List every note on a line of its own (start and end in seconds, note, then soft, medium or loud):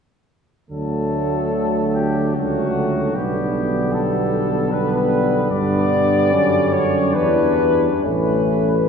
0.70 2.38 D2 soft
0.70 2.32 D3 soft
0.70 2.32 F#3 soft
0.70 2.32 A3 soft
0.70 1.93 A4 soft
1.95 2.35 G4 soft
2.35 3.16 C#2 soft
2.35 3.14 D3 soft
2.35 3.14 F#3 soft
2.35 3.18 A3 soft
2.35 3.13 F#4 soft
3.14 5.49 B1 soft
3.14 4.70 D3 soft
3.14 4.69 G3 soft
3.14 4.72 B3 soft
3.14 3.95 G4 soft
3.93 4.71 A4 soft
4.71 5.50 D3 soft
4.71 5.49 G3 soft
4.71 5.50 B3 soft
4.71 5.51 B4 medium
5.50 6.34 G2 soft
5.50 7.18 D3 soft
5.50 7.00 G3 medium
5.50 6.34 B3 soft
5.50 6.71 D5 medium
6.32 7.16 F#2 soft
6.32 7.15 C#4 soft
6.73 7.16 C#5 medium
7.14 7.88 E2 soft
7.14 7.89 E3 soft
7.14 8.07 G3 soft
7.14 8.05 D4 soft
7.14 7.87 B4 medium
8.04 8.89 A1 soft
8.04 8.89 E3 soft
8.04 8.89 A3 soft
8.04 8.78 C#4 soft
8.04 8.89 B4 medium